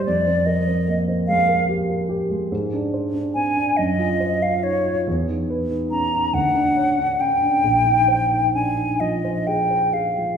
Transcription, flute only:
X:1
M:6/8
L:1/16
Q:3/8=47
K:Bbmix
V:1 name="Flute"
d2 e3 z f2 z4 | z4 a2 e3 f _d2 | z4 b2 ^f4 g2- | g4 a2 e2 g2 f2 |]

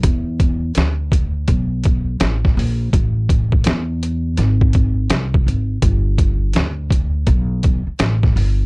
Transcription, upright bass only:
X:1
M:4/4
L:1/16
Q:"Swing 16ths" 1/4=83
K:Edor
V:1 name="Upright bass" clef=bass
E,,4 D,,4 B,,,4 A,,,2 ^A,,,2 | A,,,4 E,,4 ^G,,,4 ^B,,,2 G,,,2 | G,,,4 D,,4 B,,,3 z A,,,2 G,,,2 |]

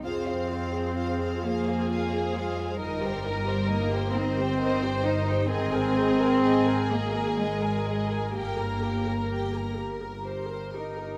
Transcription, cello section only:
X:1
M:6/8
L:1/8
Q:3/8=43
K:Fdor
V:1 name="Cello section"
C3 B,2 A, | G,2 B, C2 E | C3 B, A,2 | B,3 z2 E |]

